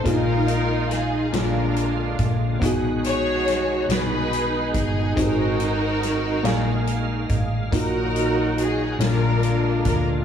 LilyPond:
<<
  \new Staff \with { instrumentName = "String section" } { \time 6/8 \key bes \phrygian \tempo 4. = 47 << { bes'4 aes'8 bes'4 r8 | r8 des''4 b'4 gis'8 | bes'2~ bes'8 r8 | bes'4 aes'8 bes'4 bes'8 | } \\ { <ees' f'>4. <d' f'>4. | r8 <fis' gis'>4 <dis' gis'>4. | <ees' ges'>2~ <ees' ges'>8 r8 | <ees' ges'>4. <d' f'>4. | } >> }
  \new Staff \with { instrumentName = "Grand piano" } { \time 6/8 \key bes \phrygian <bes d' ees' f' aes'>4. <bes des' d' f' aes'>4. | <b dis' fis' gis'>2. | <c' ees' ges' g' aes'>4. <bes aes' d'' f''>4. | <bes ees' ges' bes'>4. <des' d' f' aes' bes'>4. | }
  \new Staff \with { instrumentName = "Grand piano" } { \clef bass \time 6/8 \key bes \phrygian bes,4. bes,4. | b,4. r4. | aes,4. r4. | bes,4. bes,4. | }
  \new Staff \with { instrumentName = "Tonewheel organ" } { \time 6/8 \key bes \phrygian <d ees aes bes f'>4. <d aes bes fes' f'>4. | <d dis gis b fis'>2. | <ees aes c' ges'>4. <aes bes f''>4. | <ees ges bes f' ges'>4. <d aes bes fes' f'>4. | }
  \new Staff \with { instrumentName = "Fingered electric bass" } { \clef bass \time 6/8 \key bes \phrygian bes,,4. bes,,4 bes,,8 | b,,4. b,,4 g,,8 | aes,,4. bes,,4 a,,8 | bes,,4. bes,,4 d,8 | }
  \new DrumStaff \with { instrumentName = "Drums" } \drummode { \time 6/8 <hh bd>8 hh8 <hh sn>8 <hh sn>8 hh8 <hh bd>8 | <hh bd>8 hh8 <hh sn>8 <hh sn>8 hh8 <hh bd>8 | <hh bd>8 hh8 <hh sn>8 <hh sn>8 hh8 <hh bd>8 | <hh bd>8 hh8 hh8 <hh sn>8 hh8 <hh bd>8 | }
>>